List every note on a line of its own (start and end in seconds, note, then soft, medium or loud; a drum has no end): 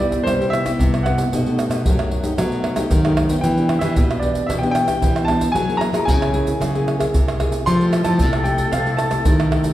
0.00 0.24 G2 medium
0.00 0.18 G3 medium
0.00 0.35 B3 medium
0.00 0.35 E4 medium
0.00 0.35 G4 medium
0.00 0.23 D5 medium
0.00 pandeiro medium
0.12 pandeiro medium
0.12 shaker medium
0.12 surdo soft
0.23 0.77 C3 medium
0.23 0.71 G3 medium
0.23 0.49 C5 medium
0.23 pandeiro medium
0.23 tamborim medium
0.23 shaker medium
0.23 surdo medium
0.40 0.62 B3 medium
0.40 0.62 E4 medium
0.40 0.62 G4 medium
0.40 pandeiro soft
0.40 shaker soft
0.50 1.01 E5 loud
0.50 pandeiro medium
0.50 tamborim medium
0.50 shaker medium
0.64 1.01 B3 medium
0.64 1.01 E4 medium
0.64 1.01 G4 medium
0.64 pandeiro medium
0.64 tamborim medium
0.64 shaker medium
0.64 surdo soft
0.79 1.29 G2 medium
0.79 1.24 C3 medium
0.79 pandeiro medium
0.79 shaker medium
0.79 surdo medium
0.94 pandeiro soft
0.94 tamborim medium
0.94 shaker soft
1.03 1.22 B3 medium
1.03 1.23 E4 medium
1.03 1.23 G4 medium
1.03 3.12 F#5 medium
1.03 pandeiro medium
1.03 tamborim medium
1.18 pandeiro medium
1.18 shaker medium
1.18 surdo soft
1.32 1.66 B2 loud
1.32 1.83 B2 medium
1.32 1.40 A3 medium
1.32 1.40 D#4 medium
1.32 1.41 G4 medium
1.32 pandeiro medium
1.32 shaker medium
1.32 surdo medium
1.46 1.81 A3 medium
1.46 1.82 D#4 medium
1.46 1.82 G4 medium
1.46 pandeiro soft
1.46 shaker soft
1.59 pandeiro medium
1.59 tamborim medium
1.59 shaker medium
1.70 1.84 B2 medium
1.70 pandeiro medium
1.70 tamborim medium
1.70 shaker medium
1.85 2.35 F#2 medium
1.85 2.30 F#3 medium
1.85 2.10 A3 medium
1.85 2.10 D#4 medium
1.85 2.10 G4 medium
1.85 pandeiro medium
1.85 shaker medium
1.85 surdo loud
1.99 pandeiro soft
1.99 tamborim medium
1.99 shaker soft
1.99 surdo soft
2.11 pandeiro medium
2.23 2.33 A3 medium
2.23 2.33 D#4 medium
2.23 2.33 G4 medium
2.23 pandeiro medium
2.23 shaker medium
2.23 surdo soft
2.38 2.88 B2 medium
2.38 2.83 F#3 medium
2.38 2.74 A3 medium
2.38 2.74 D#4 medium
2.38 pandeiro medium
2.38 tamborim medium
2.38 shaker medium
2.38 surdo medium
2.52 pandeiro soft
2.52 shaker soft
2.64 pandeiro medium
2.64 tamborim medium
2.76 2.99 A3 medium
2.76 2.99 D#4 medium
2.76 2.99 G4 medium
2.76 pandeiro medium
2.76 tamborim medium
2.76 shaker medium
2.76 surdo soft
2.90 3.41 F#2 medium
2.90 3.36 D#3 medium
2.90 pandeiro medium
2.90 shaker medium
2.90 surdo loud
3.04 3.27 A3 medium
3.04 3.27 D#4 medium
3.04 3.27 G4 medium
3.04 pandeiro soft
3.04 tamborim medium
3.04 shaker soft
3.17 pandeiro medium
3.17 tamborim medium
3.17 surdo soft
3.29 3.52 B3 medium
3.29 3.52 D4 medium
3.29 3.52 G4 medium
3.29 pandeiro medium
3.29 shaker medium
3.29 surdo soft
3.41 3.94 E3 medium
3.41 3.77 E3 loud
3.41 3.83 G5 medium
3.41 pandeiro medium
3.41 shaker medium
3.41 surdo medium
3.57 3.79 B3 medium
3.57 3.79 D4 medium
3.57 3.80 G4 medium
3.57 pandeiro soft
3.57 shaker soft
3.69 pandeiro medium
3.69 tamborim medium
3.79 3.96 E3 medium
3.79 4.18 B3 medium
3.79 4.18 D4 medium
3.79 4.18 G4 medium
3.79 4.18 E5 medium
3.79 pandeiro medium
3.79 tamborim medium
3.79 shaker medium
3.96 4.47 B2 medium
3.96 4.42 B2 medium
3.96 pandeiro medium
3.96 shaker medium
3.96 surdo loud
4.11 pandeiro soft
4.11 tamborim medium
4.11 shaker soft
4.11 surdo soft
4.20 4.47 B3 medium
4.20 4.47 D4 medium
4.20 4.48 G4 medium
4.20 4.49 D5 medium
4.20 pandeiro medium
4.35 pandeiro medium
4.35 shaker medium
4.35 surdo soft
4.47 4.94 B2 medium
4.47 4.99 E3 medium
4.47 4.52 E5 medium
4.47 pandeiro medium
4.47 tamborim medium
4.47 shaker medium
4.47 surdo medium
4.59 4.85 B3 medium
4.59 4.64 G5 medium
4.63 4.85 D4 medium
4.63 4.85 G4 medium
4.63 pandeiro soft
4.63 shaker soft
4.71 5.23 G5 loud
4.71 pandeiro medium
4.71 tamborim medium
4.71 shaker medium
4.87 5.24 B3 medium
4.87 5.24 D4 medium
4.87 5.24 G4 medium
4.87 pandeiro medium
4.87 tamborim medium
4.87 shaker medium
4.87 surdo soft
5.02 5.53 B2 medium
5.02 5.47 E3 medium
5.02 pandeiro medium
5.02 shaker medium
5.02 surdo medium
5.16 pandeiro soft
5.16 tamborim medium
5.16 shaker soft
5.25 5.46 B3 medium
5.25 5.51 A5 medium
5.25 pandeiro medium
5.25 tamborim medium
5.29 5.46 D4 medium
5.29 5.46 G4 medium
5.41 pandeiro medium
5.41 shaker medium
5.41 surdo soft
5.52 6.05 F#3 medium
5.52 5.89 F#3 loud
5.52 5.63 A#3 soft
5.52 5.63 E4 medium
5.52 5.63 G#4 medium
5.52 5.78 G#5 loud
5.52 pandeiro medium
5.52 shaker medium
5.52 surdo medium
5.69 5.91 A#3 medium
5.69 5.91 E4 medium
5.69 5.91 G#4 medium
5.69 pandeiro soft
5.69 shaker soft
5.77 5.98 A#5 loud
5.77 pandeiro medium
5.77 tamborim medium
5.93 6.07 F#3 medium
5.93 6.29 A#3 medium
5.93 6.30 E4 medium
5.93 6.30 G#4 medium
5.93 pandeiro medium
5.93 tamborim medium
5.93 shaker medium
5.99 6.07 A#5 medium
6.05 6.58 C#3 medium
6.05 6.53 C#3 medium
6.05 7.09 G#5 medium
6.05 pandeiro medium
6.05 shaker medium
6.05 surdo medium
6.22 pandeiro soft
6.22 tamborim medium
6.22 shaker soft
6.22 surdo soft
6.33 6.69 A#3 medium
6.33 6.69 E4 medium
6.33 6.70 G#4 medium
6.33 pandeiro medium
6.47 pandeiro medium
6.47 shaker medium
6.47 surdo soft
6.60 7.06 C#3 medium
6.60 7.11 F#3 soft
6.60 pandeiro medium
6.60 tamborim medium
6.60 shaker medium
6.60 surdo medium
6.74 6.97 A#3 medium
6.74 6.97 E4 medium
6.74 6.97 G#4 medium
6.74 pandeiro soft
6.74 shaker soft
6.88 pandeiro medium
6.88 tamborim medium
6.98 7.35 A#3 medium
6.98 7.35 E4 medium
6.98 7.36 G#4 medium
6.98 pandeiro medium
6.98 tamborim medium
6.98 shaker medium
6.98 surdo soft
7.14 7.59 C3 medium
7.14 pandeiro medium
7.14 shaker medium
7.14 surdo medium
7.28 pandeiro soft
7.28 tamborim medium
7.28 shaker soft
7.39 7.64 A#3 medium
7.39 7.65 E4 medium
7.39 7.65 G#4 medium
7.39 pandeiro medium
7.39 tamborim medium
7.39 surdo soft
7.52 pandeiro medium
7.52 shaker medium
7.52 surdo soft
7.66 8.01 F3 loud
7.66 8.18 F3 medium
7.66 7.75 A3 medium
7.66 7.75 E4 soft
7.66 7.75 G4 medium
7.66 9.73 A4 medium
7.66 8.03 C6 loud
7.66 pandeiro medium
7.66 shaker medium
7.66 surdo medium
7.80 8.03 A3 medium
7.80 8.03 E4 medium
7.80 8.03 G4 medium
7.80 pandeiro soft
7.80 shaker soft
7.93 pandeiro medium
7.93 tamborim medium
7.93 shaker medium
8.04 8.20 F3 loud
8.04 8.41 A3 medium
8.04 8.41 E4 medium
8.04 8.41 G4 medium
8.04 8.42 A5 medium
8.04 pandeiro medium
8.04 tamborim medium
8.04 shaker medium
8.18 8.69 C3 medium
8.18 8.65 C3 medium
8.18 pandeiro medium
8.18 shaker medium
8.18 surdo medium
8.33 pandeiro soft
8.33 tamborim medium
8.33 shaker soft
8.33 surdo soft
8.44 8.70 A3 medium
8.44 8.71 E4 medium
8.44 8.71 G4 medium
8.44 8.72 G5 medium
8.44 pandeiro medium
8.44 shaker medium
8.58 pandeiro medium
8.58 shaker medium
8.58 surdo soft
8.72 9.18 C3 medium
8.72 9.23 F3 medium
8.72 8.97 F5 medium
8.72 pandeiro medium
8.72 tamborim medium
8.72 shaker medium
8.72 surdo medium
8.85 9.08 A3 medium
8.85 9.08 E4 medium
8.85 9.08 G4 medium
8.85 pandeiro soft
8.85 shaker soft
8.97 9.47 A5 medium
8.97 pandeiro medium
8.97 tamborim medium
8.97 shaker medium
9.10 9.47 A3 medium
9.10 9.47 E4 medium
9.10 9.47 G4 medium
9.10 pandeiro medium
9.10 tamborim medium
9.10 shaker medium
9.10 surdo soft
9.25 9.73 C3 medium
9.25 9.71 D#3 medium
9.25 pandeiro medium
9.25 shaker medium
9.25 surdo loud
9.40 pandeiro soft
9.40 tamborim medium
9.40 shaker soft
9.50 9.73 A3 medium
9.50 9.73 E4 medium
9.50 9.73 G4 medium
9.50 pandeiro medium
9.50 tamborim medium
9.64 pandeiro medium
9.64 shaker medium
9.64 surdo soft